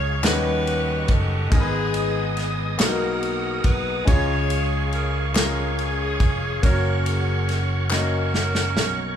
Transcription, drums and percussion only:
0.24 snare loud
0.24 clap medium
0.24 ride medium
0.67 ride soft
1.08 kick loud
1.08 ride soft
1.52 kick loud
1.52 ride medium
1.94 ride medium
2.37 snare soft
2.37 ride soft
2.79 snare loud
2.79 clap medium
2.79 ride medium
3.23 ride soft
3.64 kick loud
3.64 ride soft
4.07 kick loud
4.07 ride medium
4.50 ride medium
4.92 ride soft
5.35 snare loud
5.35 clap medium
5.35 ride medium
5.79 ride soft
6.20 kick loud
6.20 ride soft
6.63 kick loud
6.63 ride medium
7.06 ride medium
7.49 snare soft
7.49 ride soft
7.90 snare medium
7.90 clap medium
8.34 snare medium
8.55 snare medium
8.77 snare loud

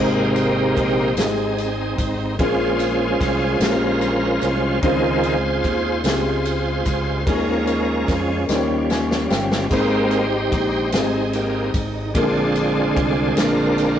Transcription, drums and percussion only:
0.36 ride soft
0.36 tambourine medium
0.77 kick medium
0.77 ride medium
1.17 snare medium
1.17 ride medium
1.17 tambourine medium
1.58 ride soft
1.58 tambourine medium
1.98 kick medium
1.98 ride medium
1.98 tambourine medium
2.39 kick loud
2.39 ride medium
2.79 ride soft
2.79 tambourine medium
3.21 kick medium
3.21 snare soft
3.21 ride medium
3.61 snare loud
3.61 ride medium
3.61 tambourine loud
4.01 ride soft
4.01 tambourine medium
4.41 ride medium
4.41 tambourine medium
4.83 kick loud
4.83 ride medium
5.23 ride soft
5.23 tambourine medium
5.64 kick loud
5.64 ride medium
6.04 snare loud
6.04 ride medium
6.04 tambourine loud
6.45 ride soft
6.45 tambourine medium
6.85 kick medium
6.85 ride medium
6.85 tambourine medium
7.27 kick loud
7.27 ride medium
7.67 ride soft
7.67 tambourine medium
8.08 kick medium
8.08 snare soft
8.08 ride medium
8.49 snare medium
8.49 tambourine loud
8.90 snare medium
8.90 tambourine medium
9.11 snare medium
9.30 snare loud
9.30 tambourine medium
9.52 snare medium
9.71 kick loud
9.71 crash medium
10.11 ride soft
10.11 tambourine medium
10.52 kick medium
10.52 ride medium
10.92 snare loud
10.92 ride medium
10.92 tambourine medium
11.33 ride soft
11.33 tambourine medium
11.74 kick medium
11.74 ride medium
11.74 tambourine medium
12.15 kick loud
12.15 ride medium
12.55 ride soft
12.55 tambourine medium
12.97 kick loud
12.97 ride medium
13.37 snare loud
13.37 ride medium
13.37 tambourine loud
13.78 ride soft
13.78 tambourine medium

